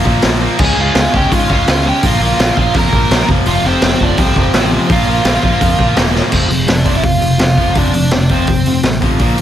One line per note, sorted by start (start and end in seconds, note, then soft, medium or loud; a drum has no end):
0.05 0.17 A#1 medium
0.05 0.22 A#2 medium
0.05 0.24 F3 medium
0.05 0.23 A#3 medium
0.05 kick medium
0.22 0.46 A#1 medium
0.22 0.40 A#2 medium
0.22 0.41 F3 medium
0.22 0.40 A#3 loud
0.22 snare loud
0.22 open hi-hat medium
0.41 0.58 A#2 medium
0.41 0.59 F3 medium
0.41 0.59 A#3 medium
0.59 0.71 C#2 loud
0.59 0.74 C#3 medium
0.59 0.76 G#3 loud
0.59 0.76 C#4 loud
0.59 kick loud
0.59 crash loud
0.64 0.79 G#4 medium
0.64 0.81 G#5 loud
0.76 0.89 C#2 medium
0.76 0.92 C#3 medium
0.76 0.93 G#3 medium
0.76 0.94 C#4 loud
0.76 1.12 F4 medium
0.81 1.13 F5 medium
0.94 1.06 C#2 medium
0.94 1.11 C#3 medium
0.94 1.11 G#3 loud
0.94 1.12 C#4 loud
0.94 snare loud
0.94 open hi-hat medium
1.12 1.25 C#2 medium
1.12 1.27 C#3 medium
1.12 1.28 G#3 medium
1.12 1.28 C#4 medium
1.12 1.31 G4 medium
1.12 kick medium
1.17 1.35 G5 medium
1.28 1.47 C#3 medium
1.28 1.48 G#3 medium
1.28 1.48 C#4 medium
1.28 1.48 F4 medium
1.28 kick loud
1.28 open hi-hat medium
1.32 1.43 G#2 medium
1.32 1.52 F5 medium
1.48 1.61 C#2 medium
1.48 1.66 C#3 medium
1.48 1.66 G#3 medium
1.48 1.67 C#4 medium
1.48 1.84 F4 medium
1.48 kick medium
1.54 1.88 F5 medium
1.67 1.90 C#2 medium
1.67 1.83 C#3 medium
1.67 1.84 G#3 medium
1.67 1.84 C#4 loud
1.67 snare loud
1.67 open hi-hat medium
1.85 2.02 C#3 medium
1.85 2.02 G#3 loud
1.85 2.02 C#4 loud
1.85 2.02 G4 medium
1.89 2.05 G5 loud
2.03 2.14 A#1 medium
2.03 2.20 A#2 medium
2.03 2.21 F3 loud
2.03 2.21 A#3 loud
2.03 2.55 F4 medium
2.03 kick loud
2.03 open hi-hat medium
2.08 2.56 F5 medium
2.20 2.32 A#1 loud
2.20 2.38 A#2 medium
2.20 2.39 F3 medium
2.20 2.40 A#3 loud
2.39 2.50 A#1 medium
2.39 2.56 A#2 medium
2.39 2.57 F3 medium
2.39 2.56 A#3 loud
2.39 snare loud
2.39 open hi-hat medium
2.57 2.69 A#1 medium
2.57 2.74 A#2 medium
2.57 2.74 F3 medium
2.57 2.75 A#3 medium
2.57 2.75 F4 medium
2.57 kick medium
2.61 2.76 F5 medium
2.74 2.87 F2 medium
2.74 2.93 A#2 medium
2.74 2.94 F3 medium
2.74 2.94 A#3 medium
2.74 3.25 A#4 medium
2.74 kick loud
2.74 open hi-hat medium
2.79 3.27 A#5 medium
2.93 3.05 A#1 medium
2.93 3.11 A#2 medium
2.93 3.12 F3 medium
2.93 3.12 A#3 loud
2.93 kick medium
3.11 3.22 A#1 medium
3.11 3.28 A#2 medium
3.11 3.30 F3 loud
3.11 3.29 A#3 loud
3.11 snare loud
3.11 open hi-hat medium
3.29 3.40 F1 medium
3.29 3.46 F2 loud
3.29 3.47 C3 loud
3.29 3.48 F3 loud
3.29 kick loud
3.46 3.58 F1 loud
3.46 3.64 F2 loud
3.46 3.65 C3 loud
3.46 3.66 F3 loud
3.46 3.64 F4 medium
3.46 open hi-hat medium
3.51 3.65 F5 loud
3.64 3.75 F1 loud
3.64 3.82 F2 medium
3.64 3.82 C3 medium
3.64 3.84 F3 loud
3.64 3.98 C4 medium
3.68 4.03 C5 medium
3.82 3.94 F1 medium
3.82 3.99 F2 medium
3.82 4.00 C3 medium
3.82 4.01 F3 loud
3.82 snare loud
3.82 open hi-hat medium
4.00 4.12 F1 medium
4.00 4.17 F2 medium
4.00 4.18 C3 medium
4.00 4.19 F3 loud
4.00 4.18 D4 medium
4.00 kick medium
4.05 4.21 D5 medium
4.17 4.30 C2 medium
4.17 4.36 F2 medium
4.17 4.37 C3 medium
4.17 4.38 F3 loud
4.17 4.86 C4 medium
4.17 4.93 C5 medium
4.17 kick loud
4.17 open hi-hat medium
4.36 4.48 F1 medium
4.36 4.53 F2 medium
4.36 4.54 C3 medium
4.36 4.55 F3 medium
4.36 kick medium
4.54 4.77 A1 medium
4.54 4.71 F2 medium
4.54 4.71 C3 loud
4.54 4.72 F3 loud
4.54 snare loud
4.54 open hi-hat medium
4.72 4.89 F2 loud
4.72 4.89 C3 medium
4.72 4.90 F3 medium
4.90 5.01 A#1 medium
4.90 5.07 A#2 loud
4.90 5.08 F3 loud
4.90 5.08 A#3 loud
4.90 5.94 F4 medium
4.90 5.95 F5 medium
4.90 kick loud
4.90 open hi-hat medium
5.08 5.19 A#1 medium
5.08 5.25 A#2 loud
5.08 5.26 F3 loud
5.08 5.26 A#3 loud
5.25 5.36 A#1 medium
5.25 5.43 A#2 medium
5.25 5.43 F3 loud
5.25 5.43 A#3 loud
5.25 snare loud
5.25 open hi-hat medium
5.43 5.55 A#1 medium
5.43 5.58 A#2 medium
5.43 5.59 F3 medium
5.43 5.60 A#3 medium
5.43 kick medium
5.60 5.73 F2 medium
5.60 5.78 A#2 medium
5.60 5.78 F3 medium
5.60 5.79 A#3 medium
5.60 kick loud
5.60 open hi-hat medium
5.79 5.91 A#1 medium
5.79 5.95 A#2 medium
5.79 5.95 F3 medium
5.79 5.96 A#3 loud
5.79 kick medium
5.96 6.20 E1 medium
5.96 6.11 A#2 loud
5.96 6.11 F3 medium
5.96 6.12 A#3 medium
5.96 snare loud
5.96 open hi-hat medium
6.12 6.31 A#2 medium
6.12 6.30 F3 loud
6.12 6.31 A#3 medium
6.12 snare medium
6.30 6.49 F1 medium
6.30 6.47 F2 medium
6.30 6.48 C3 medium
6.30 6.49 F3 loud
6.30 kick medium
6.30 crash loud
6.48 6.67 F1 medium
6.48 6.66 F2 medium
6.48 6.66 C3 medium
6.48 open hi-hat soft
6.67 6.85 F1 medium
6.67 6.84 F2 medium
6.67 6.84 C3 medium
6.67 6.95 D4 medium
6.67 6.98 D5 medium
6.67 snare loud
6.67 open hi-hat medium
6.85 7.03 F1 loud
6.85 7.01 F2 medium
6.85 7.02 C3 medium
6.85 7.03 F3 medium
6.85 kick medium
6.85 open hi-hat medium
6.95 7.04 E4 medium
6.95 7.04 E5 loud
7.02 7.21 F1 medium
7.02 7.19 F2 medium
7.02 7.20 C3 medium
7.02 7.72 F4 medium
7.02 7.79 F5 medium
7.02 kick loud
7.02 open hi-hat medium
7.20 7.39 F1 medium
7.20 7.37 F2 medium
7.20 7.38 C3 medium
7.20 open hi-hat medium
7.38 7.74 F1 medium
7.38 7.56 F2 medium
7.38 7.56 C3 medium
7.38 snare loud
7.38 open hi-hat medium
7.57 7.74 F2 medium
7.57 7.74 C3 medium
7.57 7.75 F3 loud
7.57 kick medium
7.57 open hi-hat medium
7.75 7.93 F1 loud
7.75 7.93 F2 medium
7.75 7.93 C3 medium
7.75 7.93 F3 loud
7.75 8.28 D4 medium
7.75 8.33 D5 medium
7.75 kick loud
7.75 open hi-hat medium
7.93 8.11 F1 loud
7.93 8.11 F2 medium
7.93 8.11 C3 medium
7.93 open hi-hat medium
8.11 8.29 F1 medium
8.11 8.29 F2 medium
8.11 8.29 C3 medium
8.11 snare loud
8.11 open hi-hat medium
8.29 8.47 F1 medium
8.29 8.48 F2 medium
8.29 8.48 C3 medium
8.29 8.48 F3 medium
8.29 8.82 C4 medium
8.29 8.81 C5 medium
8.29 kick medium
8.29 open hi-hat medium
8.47 8.65 F1 medium
8.47 8.65 F2 medium
8.47 8.66 C3 medium
8.47 kick loud
8.47 open hi-hat medium
8.65 8.83 F1 medium
8.65 8.82 F2 medium
8.65 8.83 C3 medium
8.65 open hi-hat medium
8.83 9.18 A1 medium
8.83 9.00 F2 medium
8.83 9.00 C3 medium
8.83 snare loud
8.83 open hi-hat medium
9.01 9.19 F2 medium
9.01 9.19 C3 loud
9.01 9.19 F3 loud
9.01 kick medium
9.01 open hi-hat medium
9.19 9.37 A#1 medium
9.19 9.37 A#2 medium
9.19 9.37 F3 loud
9.19 9.38 A#3 loud
9.19 kick medium
9.19 open hi-hat medium
9.38 9.41 A#2 medium
9.38 open hi-hat medium